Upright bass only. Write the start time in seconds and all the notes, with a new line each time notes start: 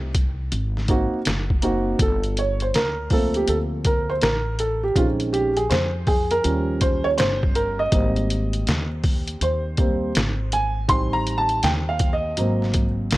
Already playing: C2
0.52 G#1
1.14 muted upright bass stroke
1.26 F#1
1.99 G1
2.74 D2
3.48 D2
4.22 A1
4.96 A#1
5.71 F2
6.45 D#2
7.19 G1
7.92 G#1
8.67 D#2
9.41 D#2
10.16 G#1
10.89 A1
11.64 D#2
12.38 G#1
13.12 A#1